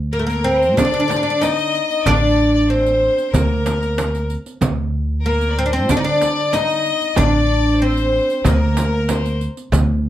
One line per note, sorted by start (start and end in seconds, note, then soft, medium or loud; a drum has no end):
0.00 0.78 D2 medium
0.13 0.19 A#3 medium
0.13 0.26 A#4 medium
0.13 0.27 A#4 medium
0.19 0.26 A3 medium
0.27 0.46 A#3 medium
0.27 0.74 A#4 medium
0.27 0.49 A#4 medium
0.27 riq soft
0.27 darbuka ka soft
0.44 0.77 C4 medium
0.44 0.78 C5 medium
0.62 riq soft
0.62 darbuka ka soft
0.77 1.79 D3 medium
0.77 0.83 D4 medium
0.77 1.42 D5 medium
0.77 1.23 D5 medium
0.77 riq medium
0.77 darbuka dum medium
0.77 frame drum medium
0.85 0.92 D4 medium
0.94 0.99 D4 medium
1.00 1.07 D4 medium
1.08 1.15 D4 medium
1.08 riq soft
1.08 darbuka tek medium
1.08 frame drum medium
1.16 1.22 D4 medium
1.23 1.29 D4 medium
1.23 1.43 D5 medium
1.23 darbuka ka soft
1.30 1.38 D4 medium
1.41 2.06 D#4 medium
1.41 1.53 D5 medium
1.41 1.90 D#5 loud
1.41 riq medium
1.41 darbuka tek medium
1.41 frame drum medium
1.53 2.06 D#5 medium
1.59 riq soft
1.75 riq soft
1.90 2.08 D#5 medium
1.90 riq soft
1.90 darbuka ka soft
2.05 3.07 A1 medium
2.05 2.66 D4 loud
2.05 2.69 D5 medium
2.05 2.54 D5 loud
2.05 riq medium
2.05 darbuka dum medium
2.05 frame drum medium
2.54 2.71 D5 medium
2.70 3.34 C4 medium
2.70 3.35 C5 medium
2.70 3.34 C5 medium
2.86 riq soft
2.86 darbuka ka soft
3.18 riq soft
3.18 darbuka ka soft
3.33 4.35 D2 medium
3.33 4.26 A#3 medium
3.33 4.29 A#4 medium
3.33 riq medium
3.33 darbuka dum medium
3.33 frame drum medium
3.66 riq soft
3.66 darbuka tek medium
3.66 frame drum medium
3.82 riq soft
3.82 darbuka ka soft
3.98 riq soft
3.98 darbuka tek medium
3.98 frame drum medium
4.15 riq soft
4.30 riq soft
4.46 riq soft
4.46 darbuka ka soft
4.61 5.89 D2 medium
4.61 riq medium
4.61 frame drum medium
4.61 darbuka dum medium
5.25 5.55 A#3 medium
5.25 5.73 A#4 medium
5.25 5.49 A#4 medium
5.41 riq soft
5.41 darbuka ka soft
5.51 5.58 D5 medium
5.59 5.65 C4 medium
5.59 5.90 C5 medium
5.66 5.72 D4 medium
5.71 5.90 C4 medium
5.71 5.92 C5 medium
5.71 riq soft
5.71 darbuka ka soft
5.89 6.91 D3 medium
5.89 5.96 D4 medium
5.89 6.03 D5 medium
5.89 6.04 D5 medium
5.89 riq medium
5.89 frame drum medium
5.89 darbuka dum medium
5.97 6.04 D#4 medium
6.04 6.53 D4 medium
6.04 6.50 D5 medium
6.04 6.56 D5 medium
6.21 riq soft
6.21 darbuka tek medium
6.21 frame drum medium
6.37 darbuka ka soft
6.53 7.17 D#4 medium
6.53 7.17 D#5 medium
6.53 7.20 D#5 loud
6.53 riq soft
6.53 darbuka tek medium
6.53 frame drum medium
6.70 riq soft
6.86 riq soft
7.01 riq soft
7.01 darbuka ka soft
7.16 8.18 A1 medium
7.16 7.83 D4 loud
7.16 7.81 D5 medium
7.16 7.84 D5 loud
7.16 riq medium
7.16 frame drum loud
7.16 darbuka dum loud
7.81 8.41 C4 medium
7.81 8.45 C5 medium
7.81 8.48 C5 medium
7.97 riq soft
7.97 darbuka ka soft
8.29 riq soft
8.29 darbuka ka soft
8.45 9.46 D2 medium
8.45 9.37 A#3 medium
8.45 9.37 A#4 medium
8.45 9.11 A#4 medium
8.45 riq medium
8.45 frame drum medium
8.45 darbuka dum loud
8.77 riq soft
8.77 darbuka tek medium
8.77 frame drum medium
8.94 darbuka ka soft
9.09 9.41 C5 medium
9.09 riq medium
9.09 darbuka tek medium
9.09 frame drum medium
9.26 riq soft
9.41 riq soft
9.57 riq soft
9.57 darbuka ka soft
9.72 10.09 D2 loud
9.72 riq medium
9.72 frame drum medium
9.72 darbuka dum loud